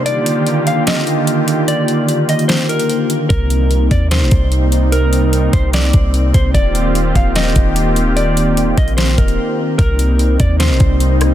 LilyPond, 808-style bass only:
\new Staff \with { instrumentName = "808-style bass" } { \clef bass \time 4/4 \key c \minor \tempo 4 = 148 r1 | r1 | c,4. ees,8. bes,,16 c,4.~ | c,4. c,4 c,4 c,8 |
ees,,4. ees,,4 ees,,4.~ | ees,,4. bes,,4 ees,,8 r4 | c,4. ees,8. bes,,16 c,4. | }